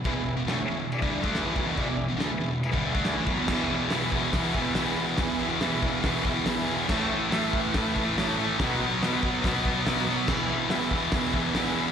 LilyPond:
<<
  \new Staff \with { instrumentName = "Transistor combo organ" } { \time 4/4 \key e \mixolydian \tempo 4 = 141 <e' gis' b'>8 r8 <e' gis' cis''>8 r8 <e' gis' d''>8 r8 <e' gis' b'>8 r8 | <e' gis' d''>8 r8 <e' gis' b'>8 r8 <e' gis' b'>8 e''8 <e' gis' b' gis''>8 b''8 | \key e \major <e' gis' b'>8 r8 <e' gis' b'>8 r8 <e' gis' b'>8 r8 <e' gis' b'>8 r8 | <e' gis' b'>8 r8 <e' gis' b'>8 r8 <e' gis' b'>8 r8 <e' gis' b'>8 r8 |
<e' a' cis''>8 r8 <e' a' e''>8 r8 <e' a' b'>8 r8 <e' a' cis''>8 r8 | <fis' b' dis''>8 r8 <fis' b' dis''>8 r8 <fis' b' dis''>8 r8 <fis' b' dis''>8 r8 | <gis' b' e''>8 r8 <gis' b' e''>8 r8 <gis' b' e''>8 r8 <gis' b' e''>8 r8 | }
  \new Staff \with { instrumentName = "Distorted electric guitar" } { \clef bass \time 4/4 \key e \mixolydian <e, b,>16 <e, b,>8 <e, b,>16 <d a>16 r16 <e, b,>8 r16 <g, d g>8 <d a d'>8 <a, e>16 <b, fis>16 <e, b,>16 | <e, b,>16 <e, b,>8 <e, b,>16 <d a>16 r16 <e, b,>8 r16 <g, d g>8 <d a d'>8 <a, e>16 <b, fis>16 <e, b,>16 | \key e \major <e, b, e>8 <b, e>8 <e, b, e>8 <b, e>8 <e, b, e>8 <e, b, e>8 <e, b, e>8 <b, e>8 | <e, b, e>8 <b, e>8 <e, b, e>8 <b, e>8 <e, b, e>8 <e, b, e>8 <e, b, e>8 <b, e>8 |
<a, e a>8 <e a>8 <a, e a>8 <e a>8 <a, e a>8 <a, e a>8 <a, e a>8 <e a>8 | <b, fis b>8 <fis b>8 <b, fis b>8 <fis b>8 <b, fis b>8 <b, fis b>8 <b, fis b>8 <fis b>8 | <e, b, e>8 <b, e>8 <e, b, e>8 <b, e>8 <e, b, e>8 <e, b, e>8 <e, b, e>8 <b, e>8 | }
  \new DrumStaff \with { instrumentName = "Drums" } \drummode { \time 4/4 <cymc bd>4 <cymc sn>4 cymc16 bd8 bd16 <cymc sn>8 bd8 | <cymc bd>4 <cymc sn>4 cymc16 bd8 bd16 <cymc sn>8 bd8 | <cymc bd sn>4 <hho sn>8 bd8 <hho bd sn>8 bd8 <hho sn>4 | <hho bd sn>4 <hho sn>8 bd8 <hho bd sn>8 bd8 <hho sn>4 |
<cymc bd sn>4 <hho sn>8 bd8 <hho bd sn>8 bd8 <hho sn>4 | <hho bd sn>4 <hho sn>8 bd8 <hho bd sn>8 bd8 <hho sn>4 | <cymc bd sn>4 <hho sn>8 bd8 <hho bd sn>8 bd8 <hho sn>4 | }
>>